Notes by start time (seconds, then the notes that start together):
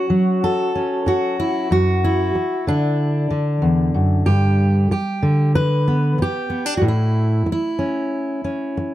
Already playing: C#4 F#4
0.10 F#3
0.44 A4
0.75 C#4
1.06 F#4, muted steel-string acoustic guitar stroke
1.40 E4
1.71 F#2 F#4
2.04 E4
2.35 muted steel-string acoustic guitar stroke
2.67 D3 D4
3.30 D3
3.62 E2
3.94 F#2
4.26 G2 G4
4.91 G4, muted steel-string acoustic guitar stroke
5.23 D3
5.55 B4
5.88 B3
6.18 muted steel-string acoustic guitar stroke
6.22 G4
6.50 B3
6.66 D4
6.77 F#4
6.81 A2
6.88 E4
7.46 muted steel-string acoustic guitar stroke
7.52 E4
7.79 C#4
8.44 C#4
8.77 muted steel-string acoustic guitar stroke